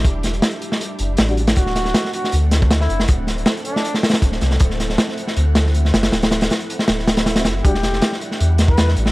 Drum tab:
HH |x---x-x-x-x-x---x---x---x-x-x-x-|x---x---x---x---x---x---x---x---|x---x-x-x-x-x---x---xxx-x---x---|x---x---x---x---x---x---x---x-x-|
SD |----o---o-----o---------o-----o-|--o-o-o-o-o---o-----o---o-o---o-|----o---o-----o---o-ooo---o-o-o-|--o-o-o-o-o---o-----o-o---o-o-o-|
BD |o-------------------------------|o---------------------o---------|o-----------------------o-------|o-------------------------------|

HH |x-x-x-x-x-x-x---x---x-x-x-x-x---|x---x---x---x---x---x---x---x---|
SD |o-o-o-o-o-----o-o-o-o-o-o-o-o---|--o-o-o-o-o---o-----o---o-o---o-|
BD |--------------------------------|o---------------------o---------|